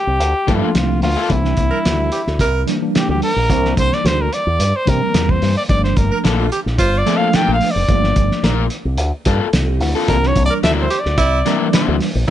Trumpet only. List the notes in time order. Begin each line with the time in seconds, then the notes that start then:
Already playing: G4
0.55 E4
0.63 F4
1.03 F4
1.31 E4
2.96 G4
3.10 G4
3.23 A#4
3.79 C5
3.94 D5
4.06 C5
4.22 A#4
4.34 D5
4.76 C5
4.89 A#4
5.30 C5
5.57 D5
5.70 D5
5.84 C5
5.97 A#4
6.79 C5
6.98 D5
7.17 F5
7.35 G5
7.54 F5
7.71 D5
10.09 A#4
10.27 C#5
10.46 D5
10.64 E5
10.81 C5
11.00 D5